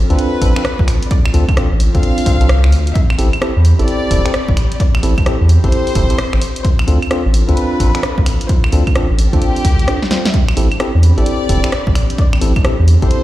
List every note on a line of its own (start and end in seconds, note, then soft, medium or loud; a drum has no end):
0.00 10.30 C4 medium
0.00 2.91 F4 medium
0.00 2.91 A4 medium
0.10 0.17 D2 medium
0.10 0.40 C4 medium
0.10 0.40 D4 medium
0.10 0.40 F4 medium
0.10 0.40 A4 loud
0.10 1.04 B4 loud
0.10 closed hi-hat soft
0.19 closed hi-hat medium
0.42 0.53 A1 loud
0.42 0.52 C4 medium
0.42 0.52 D4 medium
0.42 0.52 F4 medium
0.42 0.52 A4 loud
0.42 kick medium
0.42 open hi-hat loud
0.56 0.62 C4 medium
0.56 0.62 D4 medium
0.56 0.62 F4 medium
0.56 0.62 A4 medium
0.56 finger snap medium
0.56 closed hi-hat medium
0.65 cross-stick loud
0.65 closed hi-hat medium
0.79 0.86 D2 medium
0.79 kick loud
0.88 finger snap medium
0.88 open hi-hat loud
1.03 closed hi-hat medium
1.11 1.44 D5 loud
1.11 kick loud
1.11 closed hi-hat medium
1.26 finger snap medium
1.26 claves medium
1.34 1.46 D2 loud
1.34 1.44 C4 medium
1.34 1.44 D4 medium
1.34 1.44 F4 medium
1.34 1.44 A4 loud
1.34 open hi-hat loud
1.49 kick loud
1.49 closed hi-hat soft
1.49 claves medium
1.57 1.67 C4 medium
1.57 1.67 D4 medium
1.57 1.67 F4 medium
1.57 1.67 A4 loud
1.57 cross-stick loud
1.57 closed hi-hat medium
1.72 1.89 A1 medium
1.80 open hi-hat loud
1.95 2.02 D2 medium
1.95 2.24 C4 medium
1.95 2.24 D4 medium
1.95 2.24 F4 medium
1.95 2.24 A4 loud
1.95 2.89 F5 loud
1.95 kick medium
1.95 closed hi-hat soft
2.03 closed hi-hat medium
2.18 open hi-hat medium
2.26 2.65 C2 medium
2.26 2.36 C4 medium
2.26 2.36 D4 medium
2.26 2.36 F4 medium
2.26 2.36 A4 medium
2.26 kick loud
2.26 open hi-hat loud
2.41 2.47 C4 medium
2.41 2.47 D4 medium
2.41 2.47 F4 medium
2.41 2.47 A4 medium
2.41 closed hi-hat medium
2.49 cross-stick loud
2.49 closed hi-hat medium
2.64 2.93 D2 medium
2.64 finger snap medium
2.72 open hi-hat loud
2.87 closed hi-hat medium
2.95 6.38 G4 medium
2.95 3.28 E5 loud
2.95 6.38 B5 medium
2.95 kick loud
2.95 closed hi-hat medium
3.10 finger snap medium
3.10 claves medium
3.18 3.30 A1 loud
3.18 3.29 C4 medium
3.18 3.29 E4 medium
3.18 3.29 G4 medium
3.18 3.29 A4 loud
3.18 open hi-hat loud
3.33 closed hi-hat soft
3.33 claves medium
3.42 3.52 C4 medium
3.42 3.52 E4 medium
3.42 3.52 G4 medium
3.42 3.52 A4 loud
3.42 cross-stick loud
3.42 closed hi-hat medium
3.56 3.74 E2 medium
3.65 open hi-hat loud
3.79 3.86 A1 medium
3.79 4.09 C4 medium
3.79 4.09 E4 medium
3.79 4.09 G4 medium
3.79 4.09 A4 loud
3.79 4.73 D5 loud
3.79 closed hi-hat soft
3.88 closed hi-hat medium
4.11 4.23 E1 loud
4.11 4.21 C4 medium
4.11 4.21 E4 medium
4.11 4.21 G4 medium
4.11 4.21 A4 loud
4.11 kick medium
4.11 open hi-hat loud
4.25 4.31 C4 medium
4.25 4.31 E4 medium
4.25 4.31 G4 medium
4.25 4.31 A4 medium
4.25 finger snap medium
4.25 closed hi-hat medium
4.34 cross-stick loud
4.34 closed hi-hat medium
4.48 4.55 A1 medium
4.48 kick loud
4.57 finger snap medium
4.57 open hi-hat loud
4.72 closed hi-hat medium
4.80 5.13 D5 loud
4.80 kick loud
4.80 closed hi-hat medium
4.95 finger snap medium
4.95 claves medium
5.03 5.15 A1 loud
5.03 5.13 C4 medium
5.03 5.13 E4 medium
5.03 5.13 G4 medium
5.03 5.13 A4 loud
5.03 open hi-hat loud
5.18 kick loud
5.18 closed hi-hat soft
5.18 claves medium
5.26 5.36 C4 medium
5.26 5.36 E4 medium
5.26 5.36 G4 medium
5.26 5.36 A4 loud
5.26 cross-stick loud
5.26 closed hi-hat medium
5.41 5.58 E2 medium
5.49 open hi-hat loud
5.64 5.71 A1 medium
5.64 5.94 C4 medium
5.64 5.94 E4 medium
5.64 5.94 G4 medium
5.64 5.94 A4 loud
5.64 6.58 C5 loud
5.64 kick medium
5.64 closed hi-hat soft
5.72 closed hi-hat medium
5.87 open hi-hat medium
5.95 6.07 E1 loud
5.95 6.06 C4 medium
5.95 6.06 E4 medium
5.95 6.06 G4 medium
5.95 6.06 A4 medium
5.95 kick loud
5.95 open hi-hat loud
6.10 6.16 C4 medium
6.10 6.16 E4 medium
6.10 6.16 G4 medium
6.10 6.16 A4 medium
6.10 closed hi-hat medium
6.18 cross-stick loud
6.18 closed hi-hat medium
6.33 6.40 A1 medium
6.33 finger snap medium
6.42 13.23 D4 medium
6.42 10.30 F4 medium
6.42 10.30 A4 medium
6.42 open hi-hat loud
6.56 closed hi-hat medium
6.64 6.98 C5 loud
6.64 kick loud
6.64 closed hi-hat medium
6.79 finger snap medium
6.79 claves medium
6.88 7.00 D2 loud
6.88 6.98 C4 medium
6.88 6.98 D4 medium
6.88 6.98 F4 medium
6.88 6.98 A4 loud
6.88 open hi-hat loud
7.02 closed hi-hat soft
7.02 claves medium
7.11 7.21 C4 medium
7.11 7.21 D4 medium
7.11 7.21 F4 medium
7.11 7.21 A4 medium
7.11 cross-stick loud
7.11 closed hi-hat medium
7.25 7.43 A1 medium
7.34 open hi-hat loud
7.48 7.55 D2 medium
7.48 7.78 C4 medium
7.48 7.78 D4 medium
7.48 7.78 F4 medium
7.48 7.78 A4 loud
7.48 8.42 B4 loud
7.48 closed hi-hat soft
7.57 closed hi-hat medium
7.80 7.92 A1 loud
7.80 7.90 C4 medium
7.80 7.90 D4 medium
7.80 7.90 F4 medium
7.80 7.90 A4 medium
7.80 kick medium
7.80 open hi-hat loud
7.95 8.01 C4 medium
7.95 8.01 D4 medium
7.95 8.00 F4 medium
7.95 8.00 A4 medium
7.95 finger snap medium
7.95 closed hi-hat medium
8.03 cross-stick loud
8.03 closed hi-hat medium
8.18 8.25 D2 medium
8.18 kick loud
8.26 finger snap medium
8.26 open hi-hat loud
8.41 closed hi-hat medium
8.49 8.82 C5 loud
8.49 kick loud
8.49 closed hi-hat medium
8.64 finger snap medium
8.64 claves medium
8.72 8.84 D2 loud
8.72 8.83 C4 medium
8.72 8.83 D4 medium
8.72 8.83 F4 medium
8.72 8.83 A4 loud
8.72 open hi-hat loud
8.87 kick loud
8.87 closed hi-hat soft
8.87 claves medium
8.95 9.06 C4 medium
8.95 9.06 D4 medium
8.95 9.06 F4 medium
8.95 9.06 A4 loud
8.95 cross-stick loud
8.95 closed hi-hat medium
9.10 9.28 A1 medium
9.19 open hi-hat loud
9.33 9.40 D2 medium
9.33 9.63 C4 medium
9.33 9.63 D4 medium
9.33 9.63 F4 medium
9.33 10.27 G4 loud
9.33 9.63 A4 loud
9.33 kick medium
9.33 closed hi-hat soft
9.42 closed hi-hat medium
9.56 open hi-hat medium
9.65 9.88 D2 loud
9.65 kick loud
9.65 open hi-hat loud
9.79 closed hi-hat medium
9.88 9.98 C4 medium
9.88 9.98 D4 medium
9.88 9.98 F4 medium
9.88 9.98 A4 medium
9.88 cross-stick loud
9.88 closed hi-hat medium
10.02 snare medium
10.11 10.21 C4 medium
10.11 10.21 D4 medium
10.11 10.21 F4 medium
10.11 10.21 C5 medium
10.11 snare medium
10.11 open hi-hat loud
10.25 snare medium
10.25 closed hi-hat medium
10.34 13.23 C4 medium
10.34 13.23 G4 medium
10.34 10.67 E5 loud
10.34 13.23 B5 medium
10.34 kick loud
10.34 closed hi-hat medium
10.49 finger snap medium
10.49 claves medium
10.57 10.69 A1 loud
10.57 10.67 C4 medium
10.57 10.67 E4 medium
10.57 10.67 G4 medium
10.57 10.67 A4 loud
10.57 open hi-hat loud
10.72 closed hi-hat soft
10.72 claves medium
10.80 10.90 C4 medium
10.80 10.90 E4 medium
10.80 10.90 G4 medium
10.80 10.90 A4 loud
10.80 cross-stick loud
10.80 closed hi-hat medium
10.95 11.12 E2 medium
11.03 open hi-hat loud
11.18 11.25 A1 medium
11.18 11.47 C4 medium
11.18 11.47 E4 medium
11.18 11.47 G4 medium
11.18 11.47 A4 loud
11.18 12.12 D5 loud
11.18 closed hi-hat soft
11.26 closed hi-hat medium
11.49 11.61 E1 loud
11.49 11.59 C4 medium
11.49 11.59 E4 medium
11.49 11.59 G4 medium
11.49 11.59 A4 loud
11.49 kick medium
11.49 open hi-hat loud
11.64 11.70 C4 medium
11.64 11.70 E4 medium
11.64 11.70 G4 medium
11.64 11.70 A4 medium
11.64 finger snap medium
11.64 closed hi-hat medium
11.72 cross-stick loud
11.72 closed hi-hat medium
11.87 11.94 A1 medium
11.87 kick loud
11.95 finger snap medium
11.95 open hi-hat loud
12.10 closed hi-hat medium
12.18 12.51 D5 loud
12.18 kick loud
12.18 closed hi-hat medium
12.33 finger snap medium
12.33 claves medium
12.41 12.53 A1 loud
12.41 12.52 C4 medium
12.41 12.52 E4 medium
12.41 12.52 G4 medium
12.41 12.52 A4 loud
12.41 open hi-hat loud
12.56 kick loud
12.56 closed hi-hat soft
12.56 claves medium
12.65 12.75 C4 medium
12.65 12.75 E4 medium
12.65 12.75 G4 medium
12.65 12.75 A4 loud
12.65 cross-stick loud
12.65 closed hi-hat medium
12.79 12.97 E2 medium
12.88 open hi-hat loud
13.02 13.09 A1 medium
13.02 13.23 C4 medium
13.02 13.23 E4 medium
13.02 13.23 G4 medium
13.02 13.23 A4 loud
13.02 13.23 C5 loud
13.02 kick medium
13.02 closed hi-hat soft
13.11 closed hi-hat medium